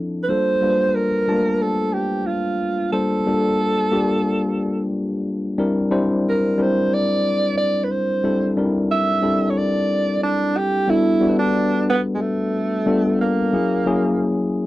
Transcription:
Already playing: F3 C4 D4 E4 A4
0.23 B4
0.29 G3 A#3 D4 F4 A4 C5
0.62 G3 A#3 D4 F4 B4
0.70 C5
0.95 A#4
1.28 G3 A3 D4 F4 A5
1.34 A#3
1.62 A4
1.94 G4
2.26 F4
2.92 G3 A#3 D4 F4 A4 C5
3.27 G3 A#3 D4 F4 A4
3.92 G3 A#3 D4 F4 G4
5.58 G3 C4 D4 E4 A#4
5.91 G3 C4 D4 E4 C5
6.29 A#4
6.58 G3 C4 D4 E4 A#4
6.62 C5
6.94 D5
7.58 D5
7.84 B4
7.91 C5
8.23 G3 C4 D4 E4 A4
8.57 G3 C4 D4 D#4 A#4
8.65 E4
8.91 E5
9.22 G3 C4 D4 E4 A4
9.50 C#5
9.58 D5
10.23 D4
10.57 G4
10.88 G3 B3 D4 E4 F#4 A4
11.21 G3 B3 D4 F#4 A4
11.29 B4
11.39 D4
11.90 B3
12.15 G#3
12.21 A3
12.86 G3 B3 D4 F4 A4
13.21 A#3
13.53 F#3 A#3 C#4 E4 G#4
13.86 F#3 A#3 C#4 E4 G#4

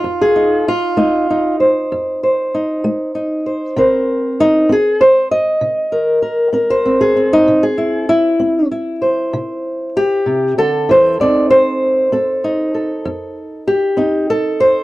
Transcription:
Already playing: F4
0.04 F2
0.21 G#4
0.36 D#4
0.68 F4
0.97 A3 D#4
1.30 D#4
1.60 C5
1.92 F2
2.23 C5
2.54 D#4
2.84 A3
3.15 D#4
3.46 C5
3.76 C3 C4 A#4 C5
4.40 D#4
4.69 C4 G#4
5.01 C5
5.31 D#5
5.61 C3
5.92 A#4
6.22 A#4
6.53 C4 A#4
6.70 C5
6.85 C4
7.01 G#4
7.17 C4
7.33 D#4
7.48 C3
7.63 G#4
7.78 E4
8.09 E4
8.40 C4
8.71 E4
9.02 C5
9.33 C3
9.97 G4
10.26 C3
10.58 D3 A4
10.89 E3 C5
11.20 F2 C4 D#4 A4 D5
11.50 C5
12.12 C4 A4
12.44 D#4
12.74 A4
13.05 F2
13.68 G4
13.97 C4 D#4
14.30 A4
14.60 C5

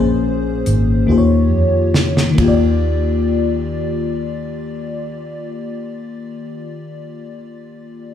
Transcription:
Already playing: A#1 A#2 A#3 C#4 G#4 C5
0.66 G#1, closed hi-hat
1.07 D#2 D#3 A#3 F4 G4
1.11 C5
1.18 C#5
1.51 F2
1.94 snare
2.17 snare
2.30 D#3
2.35 D#2 A#3, kick, ride
2.39 F4
2.44 G4
2.48 D5

